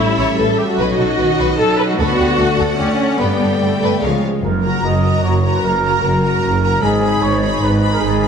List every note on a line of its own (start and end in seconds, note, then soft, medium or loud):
0.00 0.16 A2 medium
0.00 0.81 A2 medium
0.00 0.78 G3 medium
0.00 0.63 A3 soft
0.00 0.63 C#4 medium
0.00 0.99 C#4 soft
0.00 0.36 E4 medium
0.00 0.59 A4 soft
0.00 0.76 E5 soft
0.18 0.27 A1 medium
0.18 0.38 C#5 medium
0.18 0.81 E5 soft
0.39 0.47 A1 soft
0.39 0.59 A4 medium
0.39 0.47 B4 soft
0.39 1.59 C#5 soft
0.58 0.69 G4 medium
0.58 0.82 A4 soft
0.69 1.57 F#4 medium
0.79 0.88 B1 medium
0.79 2.01 B2 medium
0.79 1.19 F#3 medium
0.79 1.97 C#4 soft
0.79 2.00 D#4 medium
0.79 0.98 B4 medium
0.79 1.99 D#5 medium
0.99 1.07 B1 soft
0.99 2.01 C#4 soft
0.99 1.08 A4 soft
1.19 1.27 B1 soft
1.19 1.59 D#3 medium
1.19 1.27 B4 soft
1.39 1.47 B1 medium
1.39 1.58 B4 medium
1.39 2.01 D#5 soft
1.59 1.68 B1 soft
1.59 1.99 F#3 medium
1.59 1.79 A4 medium
1.59 1.67 A4 soft
1.59 2.01 C#5 soft
1.79 3.22 F#4 soft
1.79 1.89 B4 medium
1.89 1.97 F#4 medium
1.98 2.08 D2 medium
1.98 3.97 D3 medium
1.98 3.22 D3 medium
1.98 3.17 A3 medium
1.98 2.39 B3 medium
1.98 2.77 F#4 medium
1.98 2.18 A4 medium
1.98 3.97 D5 medium
1.98 3.18 F#5 medium
2.19 2.27 D2 soft
2.19 4.04 D4 soft
2.19 2.27 G4 soft
2.39 2.47 D2 soft
2.39 2.79 A3 medium
2.39 2.48 A4 soft
2.39 3.00 A4 soft
2.59 2.67 D2 medium
2.59 2.78 A4 medium
2.59 3.22 F#5 soft
2.79 2.88 D2 soft
2.79 3.19 A3 medium
2.79 3.19 C#4 medium
2.79 2.88 G4 soft
2.79 3.81 D5 soft
3.01 3.22 A4 soft
3.18 4.03 G2 medium
3.18 3.28 G2 medium
3.18 4.00 G3 medium
3.18 3.59 B3 medium
3.18 4.21 B3 soft
3.18 3.38 B4 medium
3.18 4.01 G5 soft
3.41 3.49 G2 soft
3.41 4.45 B3 soft
3.41 3.49 A4 soft
3.60 3.69 G2 soft
3.60 4.00 A3 medium
3.60 4.03 G4 soft
3.60 3.69 B4 soft
3.81 3.89 G2 medium
3.81 4.01 B4 medium
3.81 4.04 D5 soft
4.01 4.10 C#2 soft
4.01 4.45 C#3 soft
4.01 4.22 F3 soft
4.01 4.43 G#3 medium
4.01 4.23 F4 soft
4.01 4.10 A#4 soft
4.01 4.23 C#5 soft
4.01 4.23 F5 soft
4.23 4.83 C#4 soft
4.23 4.45 F4 soft
4.42 4.79 F#1 medium
4.42 4.99 F#2 medium
4.42 4.79 F#2 soft
4.42 5.62 F#2 soft
4.42 4.80 A#4 medium
4.63 5.82 C#3 soft
4.63 5.00 F#4 soft
4.63 5.02 A#4 soft
4.63 5.02 A#5 soft
4.83 5.19 F#1 soft
4.83 5.19 F#2 soft
4.83 6.03 C#4 soft
4.83 5.24 D#5 medium
5.02 5.42 F#4 soft
5.02 5.42 A#4 soft
5.02 5.43 A#4 soft
5.02 5.42 A#5 soft
5.23 5.59 F#1 medium
5.23 5.59 F#2 soft
5.23 5.54 C#5 soft
5.23 6.43 C#5 soft
5.43 5.81 F#4 soft
5.43 5.83 A#4 soft
5.43 6.23 A#4 soft
5.43 5.83 A#5 soft
5.54 5.64 B4 medium
5.63 5.98 F#1 medium
5.63 6.84 F#2 soft
5.63 5.99 F#2 soft
5.63 6.02 A#4 medium
5.82 6.85 C#3 soft
5.82 6.21 F#4 soft
5.82 6.22 A#4 soft
5.82 6.22 A#5 soft
6.03 6.39 F#1 medium
6.03 6.39 F#2 medium
6.03 6.85 C#4 soft
6.03 6.81 A#4 medium
6.22 6.61 F#4 soft
6.22 6.62 A#4 soft
6.22 6.61 A#4 soft
6.22 6.62 A#5 soft
6.44 6.79 F#1 medium
6.44 6.79 F#2 medium
6.44 6.85 C#5 soft
6.62 6.82 F#4 soft
6.62 6.84 A#4 soft
6.62 6.83 A#4 soft
6.62 6.83 A#5 soft
6.82 7.18 G#1 medium
6.82 7.18 G#2 medium
6.82 8.00 G#2 medium
6.82 7.01 D#4 soft
6.82 7.22 G#4 medium
6.82 7.02 G#4 soft
6.82 7.01 B5 soft
7.02 8.21 D#3 soft
7.02 7.41 D#4 soft
7.02 7.42 G#4 soft
7.02 7.41 B5 soft
7.22 7.58 G#1 medium
7.22 7.58 G#2 medium
7.22 8.28 B3 soft
7.22 7.62 C#5 medium
7.42 7.80 D#4 soft
7.42 7.82 G#4 soft
7.42 7.81 B4 soft
7.42 7.80 B5 soft
7.62 7.98 G#1 medium
7.62 7.98 G#2 medium
7.62 8.28 D#4 medium
7.62 7.92 B4 medium
7.81 8.20 D#4 soft
7.81 8.21 G#4 soft
7.81 8.28 B4 medium
7.81 8.21 B5 medium
7.93 7.97 A#4 medium
8.01 8.28 G#1 medium
8.01 8.28 G#2 medium
8.01 8.28 G#4 medium
8.21 8.28 D#3 soft
8.21 8.28 D#4 soft
8.21 8.28 G#4 soft
8.21 8.28 B5 soft